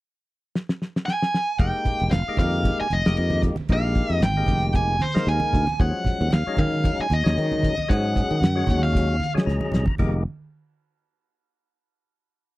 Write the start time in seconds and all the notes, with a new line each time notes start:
0.55 snare
0.69 snare
0.82 snare
0.96 snare
1.06 G#5, snare
1.22 snare
1.34 snare
1.59 F1 G#3 A#3 D#4 G4 G5, kick, hi-hat pedal, ride
1.85 muted fretless electric bass stroke, kick, hi-hat pedal, ride, low conga
2.00 F1, ride
2.11 F1 F5, snare, hi-hat pedal, ride, high conga
2.28 G#3 A#3 D#4 G4, muted fretless electric bass stroke
2.37 F2 F5, kick, snare, hi-hat pedal, ride, high conga, low conga
2.63 kick, hi-hat pedal, ride, low conga
2.81 G#5, muted fretless electric bass stroke
2.90 F1 D#5, hi-hat pedal, ride, high conga
3.05 F1 G#3 A#3 D#4 G4, snare, ride
3.17 F2, hi-hat pedal, ride
3.30 high conga
3.42 kick, hi-hat pedal, ride, low conga
3.56 muted fretless electric bass stroke, ride, high conga
3.69 A#1 G#3 A#3 D#4 G4, kick, hi-hat pedal, ride
3.73 F5
3.84 snare
3.95 kick, hi-hat pedal, ride
4.10 F2, ride
4.21 G#1 G5, snare, hi-hat pedal, ride, high conga
4.37 G#3 A#3 D#4 G4
4.46 F1, kick, snare, hi-hat pedal, ride, high conga, low conga
4.63 ride
4.73 G#5, kick, hi-hat pedal, ride, low conga
5.00 C5, hi-hat pedal, ride, high conga
5.14 G#3 A#3 D#4 A#4, muted fretless electric bass stroke, snare, ride
5.27 D#2 G#5, hi-hat pedal, ride
5.40 muted fretless electric bass stroke, high conga
5.53 D2, kick, hi-hat pedal, ride, low conga
5.67 ride, high conga
5.80 D#2 F3 F#3 G#3 C#4 F#5, kick, hi-hat pedal, ride
6.04 muted fretless electric bass stroke, kick, hi-hat pedal, ride, low conga
6.21 D#2, ride
6.31 D#2 F5, snare, hi-hat pedal, ride, high conga
6.47 F#3 G#3 C#4 D#4, muted fretless electric bass stroke
6.57 D#3 F5, kick, hi-hat pedal, ride, high conga, low conga
6.84 kick, hi-hat pedal, ride, low conga
6.99 G#5, muted fretless electric bass stroke
7.10 D#2 D#5, hi-hat pedal, ride, high conga
7.24 D#2 F#3 G#3 C#4 D#4, snare, ride
7.38 D#3, hi-hat pedal, ride
7.52 high conga
7.63 kick, hi-hat pedal, ride, low conga
7.78 muted fretless electric bass stroke, snare, ride, high conga
7.88 G#2 F#3 G#3 C#4 G#4 F#5, kick, hi-hat pedal, ride
8.15 kick, hi-hat pedal, ride, low conga
8.31 D#3, ride
8.41 F#2, snare, hi-hat pedal, ride, high conga
8.55 F#3 G#3 C#4 F#4
8.67 D#2, kick, hi-hat pedal, ride, high conga, low conga
8.83 F5, ride
8.93 kick, hi-hat pedal, ride, low conga
9.20 hi-hat pedal, ride, high conga
9.34 F#3 G#3 C#4 G#4, muted fretless electric bass stroke, snare, ride
9.46 C#2 A#5, snare, hi-hat pedal
9.61 high conga
9.72 C2, snare, hi-hat pedal, low conga
9.86 kick, high conga
9.98 F1 G#3 A#3 D#4 G4, kick, crash, high conga